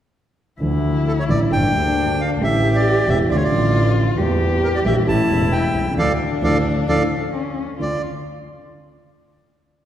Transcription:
0.59 1.25 D2 medium
0.59 1.25 D3 medium
0.59 1.25 F3 medium
0.59 1.26 A3 soft
0.59 1.52 E4 medium
0.59 1.26 E4 medium
1.08 1.13 A4 medium
1.19 1.24 C#5 medium
1.28 1.47 A1 medium
1.28 1.48 A1 medium
1.28 1.48 A2 medium
1.28 1.48 D3 medium
1.28 1.48 F3 medium
1.28 1.48 A3 medium
1.28 1.48 E4 medium
1.28 1.40 D5 medium
1.50 1.70 G1 medium
1.50 1.70 G2 medium
1.50 1.69 D3 medium
1.50 1.70 G3 medium
1.50 1.70 A#3 soft
1.50 2.43 D4 medium
1.50 1.70 G4 medium
1.50 2.21 G5 medium
1.73 2.37 D2 medium
1.73 2.38 D2 medium
1.73 2.37 D3 medium
1.73 2.37 G3 medium
1.73 2.38 A#3 medium
1.73 2.38 G4 medium
2.21 2.30 F5 medium
2.39 3.04 A1 medium
2.39 3.04 A2 medium
2.39 3.04 C#3 medium
2.39 3.04 E3 soft
2.39 3.05 A3 medium
2.39 3.05 E4 medium
2.39 3.30 G4 medium
2.43 2.77 E5 medium
2.76 3.09 D5 medium
3.07 3.26 E1 medium
3.07 3.26 E2 medium
3.07 3.26 C#3 medium
3.07 3.26 E3 medium
3.07 3.27 A3 medium
3.07 3.26 E4 medium
3.07 3.19 E5 medium
3.29 3.48 D2 medium
3.29 3.48 D3 medium
3.29 3.48 F3 medium
3.29 3.48 A3 medium
3.29 3.48 E4 medium
3.29 4.19 F4 medium
3.29 3.37 D5 medium
3.36 3.43 C#5 medium
3.44 3.92 D5 medium
3.50 4.14 A1 medium
3.50 4.15 A1 medium
3.50 4.15 A2 medium
3.50 4.14 D3 medium
3.50 4.15 F3 soft
3.50 4.15 A3 soft
3.55 4.16 E5 medium
4.17 4.81 E2 medium
4.17 4.83 E2 medium
4.17 4.82 E3 medium
4.17 4.82 G3 medium
4.17 4.83 A#3 medium
4.17 5.07 G4 medium
4.17 4.83 G4 medium
4.63 4.68 A#4 medium
4.75 4.80 D5 medium
4.84 5.04 A#1 medium
4.84 5.04 A#2 medium
4.84 5.04 E3 medium
4.84 5.04 G3 medium
4.84 5.04 A#3 medium
4.84 5.04 G4 medium
4.84 4.96 E5 medium
5.07 5.26 A1 medium
5.07 5.26 A2 medium
5.07 5.26 E3 medium
5.07 5.26 A3 medium
5.07 5.26 C#4 medium
5.07 5.93 E4 medium
5.07 5.26 G4 medium
5.07 5.54 A5 medium
5.29 5.73 E1 medium
5.29 5.94 E1 medium
5.29 5.94 E2 medium
5.29 5.93 E3 medium
5.29 5.94 A3 medium
5.29 5.95 C#4 medium
5.34 5.95 G4 medium
5.52 5.94 G5 medium
5.74 5.96 C2 medium
5.81 5.86 B1 soft
5.81 5.91 C2 medium
5.91 5.97 C#2 medium
5.96 6.13 D2 medium
5.96 6.12 A2 medium
5.96 6.12 D3 medium
5.96 6.12 F3 medium
5.96 7.29 D4 medium
5.96 6.12 A4 medium
5.96 6.12 D5 medium
5.96 6.12 F5 medium
6.42 6.59 D2 medium
6.42 6.56 A2 medium
6.42 6.57 D3 medium
6.42 6.57 F3 medium
6.42 6.58 A4 medium
6.42 6.58 D5 medium
6.42 6.57 F5 medium
6.87 7.05 D2 medium
6.87 7.03 A2 medium
6.87 7.03 D3 medium
6.87 7.03 F3 medium
6.87 7.03 A4 medium
6.87 7.03 D5 medium
6.87 7.03 F5 medium
7.32 7.76 C#4 medium
7.78 7.99 D2 soft
7.78 7.99 A3 soft
7.78 7.99 D4 soft
7.78 8.00 F4 medium
7.78 7.99 F4 soft
7.78 8.02 D5 medium

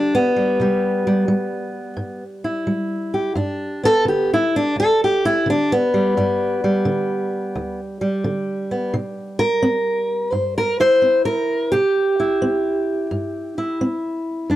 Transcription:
0.00 0.54 D3 medium
0.00 0.36 G3 soft
0.00 0.13 D4 medium
0.15 2.22 B3 medium
0.36 0.61 G3 soft
0.60 1.24 C3 medium
0.60 1.06 G3 soft
1.07 1.28 G3 soft
1.28 1.93 G3 medium
1.97 2.62 G2 medium
2.44 3.34 E4 soft
2.67 3.32 G3 medium
3.14 3.36 G4 soft
3.35 4.01 G2 medium
3.35 3.85 D4 soft
3.83 4.33 B3 soft
3.83 4.07 A4 loud
4.05 4.71 D3 medium
4.05 4.31 G4 medium
4.34 4.55 E4 medium
4.56 4.78 D4 medium
4.76 5.41 D2 medium
4.76 5.01 A4 loud
5.04 5.25 G4 medium
5.25 5.47 E4 loud
5.46 6.10 D3 medium
5.50 5.71 D4 medium
5.72 7.79 B3 medium
5.94 6.17 G3 soft
6.17 6.81 G2 medium
6.17 6.64 G3 medium
6.64 8.01 G3 soft
6.85 7.50 D3 medium
7.55 8.19 D2 medium
8.01 10.80 G3 soft
8.24 8.89 D3 medium
8.71 8.94 B3 soft
8.94 9.58 C3 medium
9.39 10.33 A#4 loud
9.62 10.27 C4 medium
10.32 10.97 G2 medium
10.32 10.55 C5 medium
10.58 10.79 A#4 medium
10.80 11.69 E4 soft
10.80 11.25 C5 loud
11.02 11.66 C4 medium
11.25 11.71 A#4 medium
11.72 12.37 C3 medium
11.72 13.80 G4 medium
12.20 13.57 E4 soft
12.42 13.06 C4 medium
13.11 13.76 G2 medium
13.58 14.48 E4 soft
13.81 14.46 C4 medium
14.50 14.56 G2 medium
14.50 14.56 D4 soft

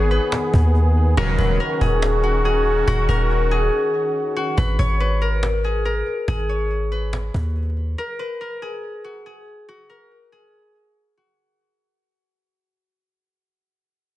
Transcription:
0.00 0.19 G#1 loud
0.00 1.13 D#3 medium
0.00 1.14 B3 medium
0.00 1.14 G#4 medium
0.00 1.75 G#4 loud
0.00 0.17 A#4 medium
0.00 1.60 C#5 medium
0.11 1.23 B4 medium
0.11 cajon slap soft
0.32 cajon slap loud
0.54 1.15 D#2 loud
0.54 cajon bass medium
0.68 cajon slap soft
0.75 cajon slap soft
1.17 1.38 D#1 loud
1.17 1.58 D#2 loud
1.17 1.58 A#2 loud
1.17 1.58 C#3 loud
1.17 4.54 D#3 medium
1.17 1.58 F#3 loud
1.17 1.58 G#3 loud
1.17 1.58 C#4 loud
1.17 4.54 C#4 medium
1.17 4.54 F#4 medium
1.17 1.44 A#4 loud
1.17 cajon bass loud
1.38 1.59 D#1 loud
1.38 1.66 B4 medium
1.38 cajon bass loud
1.60 3.08 A#4 medium
1.60 cajon slap soft
1.81 2.84 D#1 loud
1.81 2.45 G#4 medium
1.81 cajon bass medium
2.02 cajon slap loud
2.24 2.87 F#4 medium
2.24 cajon slap soft
2.45 3.51 G#4 medium
2.45 cajon slap soft
2.66 cajon slap soft
2.88 3.08 D#1 loud
2.88 4.36 F#4 loud
2.88 cajon bass loud
3.09 3.70 D#1 loud
3.09 4.63 A#4 medium
3.09 cajon bass loud
3.30 cajon slap soft
3.51 5.64 G#4 medium
3.51 cajon slap soft
4.36 6.80 F#4 medium
4.57 4.78 G#1 loud
4.57 5.00 B4 medium
4.57 cajon bass loud
4.79 6.03 G#1 loud
4.79 6.49 C#5 medium
4.79 cajon bass loud
5.00 5.28 B4 medium
5.00 cajon slap soft
5.22 5.85 A#4 medium
5.43 cajon slap loud
5.64 6.28 G#4 medium
5.64 cajon slap soft
5.85 6.98 A#4 medium
5.85 cajon slap soft
6.07 cajon slap soft
6.28 7.30 G#1 loud
6.28 8.55 G#4 loud
6.28 cajon bass loud
6.49 8.41 C#5 medium
6.71 cajon slap soft
6.92 8.04 B4 medium
6.92 cajon slap soft
7.13 cajon slap loud
7.34 7.96 D#2 loud
7.34 cajon bass medium
7.49 cajon slap soft
7.56 cajon slap soft
7.63 cajon slap soft
7.70 cajon slap soft
7.77 cajon slap soft
7.98 8.25 A#4 loud
8.19 8.47 B4 medium
8.41 9.89 A#4 medium
8.62 9.26 G#4 medium
9.04 9.68 F#4 medium
9.26 10.32 G#4 medium
9.69 11.17 F#4 loud
9.90 12.02 A#4 medium
10.32 12.60 G#4 medium
11.17 13.61 F#4 medium

